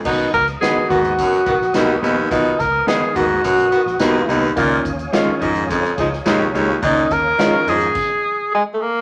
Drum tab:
CC |x---------------|----------------|----------------|--------x-------|
HH |--xxx-xxx-x-x-x-|x-x-x-x-x-x-x-x-|x-xxx-xxx-x-x-x-|x-x-x-xx--------|
SD |----o----o-oo---|--o-o----o-oo---|----o----o-oo---|----o-----------|
BD |o-o---o-o-o-----|o-o---o-o-------|o-o---o-o-o-----|o-o-----o-------|